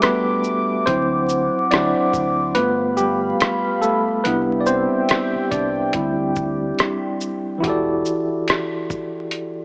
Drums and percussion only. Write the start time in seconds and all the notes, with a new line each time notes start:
0.02 cross-stick, closed hi-hat
0.44 shaker
0.87 kick, closed hi-hat
1.29 shaker
1.71 cross-stick, closed hi-hat
2.13 kick, shaker
2.55 closed hi-hat
2.97 shaker
3.40 cross-stick, closed hi-hat
3.82 shaker
4.25 closed hi-hat
4.66 shaker
5.09 cross-stick, closed hi-hat
5.51 kick, closed hi-hat, shaker
5.93 kick, closed hi-hat
6.36 kick, shaker
6.79 cross-stick, closed hi-hat
7.21 shaker
7.64 kick, closed hi-hat
8.05 shaker
8.48 cross-stick, closed hi-hat
8.90 kick, shaker
9.31 closed hi-hat